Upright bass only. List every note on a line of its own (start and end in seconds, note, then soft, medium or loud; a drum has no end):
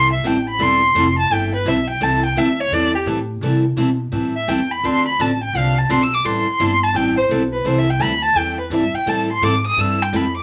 0.00 0.22 C2 medium
0.24 0.58 A1 medium
0.59 0.93 E1 medium
0.95 1.29 F1 medium
1.30 1.64 G1 medium
1.65 1.99 B1 medium
2.01 2.35 C2 medium
2.36 2.70 D2 medium
2.71 3.05 E2 medium
3.06 3.41 A2 loud
3.41 3.76 C3 medium
3.76 4.11 B2 medium
4.12 4.47 A2 medium
4.48 4.82 E2 medium
4.83 5.18 D2 medium
5.19 5.53 A1 medium
5.53 5.88 C2 medium
5.90 6.24 B1 medium
6.25 6.45 A1 medium
6.47 muted upright bass stroke soft
6.60 6.93 G1 medium
6.94 7.29 A1 medium
7.29 7.64 B1 medium
7.65 7.99 C2 medium
8.00 8.34 D2 medium
8.35 8.70 E2 medium
8.70 8.91 G2 medium
8.93 muted upright bass stroke soft
9.06 9.40 A2 medium
9.41 9.76 G#2 medium
9.77 10.11 G2 medium
10.13 10.43 F2 medium